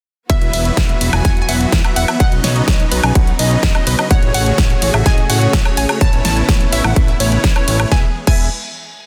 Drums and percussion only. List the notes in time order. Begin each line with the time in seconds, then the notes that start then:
0.30 kick, closed hi-hat
0.42 closed hi-hat
0.53 open hi-hat, ride
0.65 closed hi-hat
0.77 kick, snare, closed hi-hat
0.89 closed hi-hat
1.01 open hi-hat, ride
1.13 closed hi-hat, high woodblock
1.25 kick, snare, closed hi-hat
1.37 closed hi-hat
1.49 open hi-hat, ride
1.61 closed hi-hat
1.72 kick, snare, closed hi-hat
1.84 closed hi-hat, high woodblock
1.96 open hi-hat, ride
2.08 closed hi-hat, high woodblock
2.20 kick, closed hi-hat
2.32 closed hi-hat
2.44 snare, open hi-hat, ride
2.56 closed hi-hat
2.68 kick, snare, closed hi-hat
2.80 closed hi-hat
2.92 open hi-hat, ride
3.03 closed hi-hat, high woodblock
3.15 kick, closed hi-hat
3.27 closed hi-hat
3.39 open hi-hat, ride
3.51 closed hi-hat
3.63 kick, snare, closed hi-hat
3.75 closed hi-hat, high woodblock
3.87 open hi-hat, ride
3.99 closed hi-hat, high woodblock
4.11 kick, closed hi-hat
4.23 closed hi-hat
4.34 open hi-hat, ride
4.46 closed hi-hat
4.58 kick, snare, closed hi-hat
4.70 closed hi-hat
4.82 open hi-hat, ride
4.94 closed hi-hat, high woodblock
5.06 kick, snare, closed hi-hat
5.18 closed hi-hat
5.30 open hi-hat, ride
5.42 closed hi-hat
5.53 kick, snare, closed hi-hat
5.65 closed hi-hat, high woodblock
5.77 open hi-hat, ride
5.89 closed hi-hat, high woodblock
6.01 kick, closed hi-hat
6.13 closed hi-hat
6.25 snare, open hi-hat, ride
6.37 closed hi-hat
6.49 kick, snare, closed hi-hat
6.61 closed hi-hat
6.73 open hi-hat, ride
6.84 closed hi-hat, high woodblock
6.96 kick, closed hi-hat
7.08 closed hi-hat
7.20 open hi-hat, ride
7.32 closed hi-hat
7.44 kick, snare, closed hi-hat
7.56 closed hi-hat, high woodblock
7.68 open hi-hat, ride
7.80 closed hi-hat, high woodblock
7.92 kick, snare
8.27 kick, crash